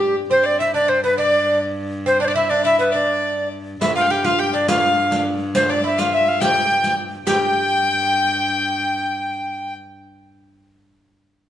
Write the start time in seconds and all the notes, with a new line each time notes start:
Already playing: G2 G3 G4
0.30 G2 C4 C5
0.44 D5
0.58 E4 E5
0.74 D4 D5
0.88 C4 C5
1.04 B3 B4
1.18 D4 D5
2.06 C4 C5
2.20 D4 D5
2.25 D4 C5 D5
2.29 C5 D5
2.35 E4 E5
2.49 D4 D5
2.64 E4 E5
2.79 B3 B4
2.92 D4 D5
3.80 G2 E4 E5, riq
3.95 F4 F5
4.01 G5
4.06 G4 F5
4.11 G5
4.24 F4 F5, riq
4.38 G4 G5
4.54 D4 D5
4.68 F4 F5, riq
5.11 D4, riq
5.55 C4 C5, riq
5.69 D4 D5
5.84 E4 E5
5.97 F4 F5, riq
6.12 E5
6.28 F5
6.41 G4 G5, riq
6.56 riq
6.70 riq
6.84 riq
7.26 G2 G4 G5, riq